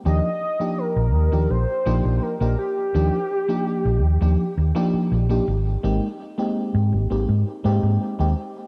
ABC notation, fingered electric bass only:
X:1
M:4/4
L:1/16
Q:1/4=83
K:Eb
V:1 name="Fingered electric bass" clef=bass
E,, z4 B,,, E,, E,, B,,, z B,,, B,,, z B,,, z2 | E,, z4 B,,, E,, E,, z E,, z2 B,,, z A,,, z | A,,, z4 A,, A,,, A,,, A,, z A,, A,, z E,, z2 |]